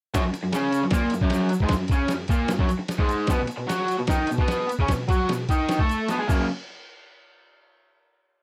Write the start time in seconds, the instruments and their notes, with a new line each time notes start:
0.14 overdriven electric guitar F#2 F#3, kick, snare, ride, shaker
0.25 overdriven electric guitar F#2
0.33 muted overdriven electric guitar stroke, ride, shaker
0.43 overdriven electric guitar F#2
0.53 overdriven electric guitar C#3 C#4, snare, ride, shaker
0.72 ride, shaker
0.82 overdriven electric guitar F#2
0.91 overdriven electric guitar A#2 A#3, kick, snare, ride, shaker
1.10 overdriven electric guitar F#2, ride
1.14 shaker
1.21 overdriven electric guitar F#2 F#3, kick
1.30 snare, ride, shaker
1.49 muted overdriven electric guitar stroke, ride, shaker
1.60 overdriven electric guitar G#2 G#3, kick
1.69 overdriven electric guitar F#2, kick, snare, ride, shaker
1.88 overdriven electric guitar C#3, kick, ride, shaker
1.93 overdriven electric guitar C#4
2.08 overdriven electric guitar F#2, snare, ride, shaker
2.28 overdriven electric guitar A#2 A#3, kick, ride, shaker
2.48 overdriven electric guitar F#2, snare, ride, shaker
2.59 overdriven electric guitar F#2 F#3, kick
2.69 muted overdriven electric guitar stroke, ride, shaker
2.79 muted overdriven electric guitar stroke
2.88 snare, ride, shaker
2.99 overdriven electric guitar G#2 G#3, kick
3.09 ride, shaker
3.27 overdriven electric guitar B2 B3, kick, snare, ride, shaker
3.40 overdriven electric guitar B2
3.47 muted overdriven electric guitar stroke, ride, shaker
3.58 overdriven electric guitar B2
3.67 overdriven electric guitar F#3 F#4, snare, ride, shaker
3.88 ride, shaker
3.99 overdriven electric guitar B2
4.07 overdriven electric guitar D#3 D#4, kick, snare, ride, shaker
4.27 overdriven electric guitar B2, ride
4.32 shaker
4.38 overdriven electric guitar B2 B3, kick
4.48 snare, ride, shaker
4.68 muted overdriven electric guitar stroke, ride, shaker
4.79 overdriven electric guitar C#3 C#4, kick
4.88 overdriven electric guitar B2, kick, snare, ride, shaker
5.08 overdriven electric guitar F#3 F#4, kick, ride
5.12 shaker
5.28 overdriven electric guitar B2, snare, ride
5.33 shaker
5.49 overdriven electric guitar D#3 D#4, kick, ride, shaker
5.69 overdriven electric guitar D#3 D#4, snare, ride, shaker
5.79 overdriven electric guitar A3 A4, kick
5.89 ride, shaker
6.08 overdriven electric guitar B2 B3, snare, ride, shaker
6.18 overdriven electric guitar G#3 G#4
6.27 overdriven electric guitar F#2 C#3 F#3 A#3 C#4, kick, crash, shaker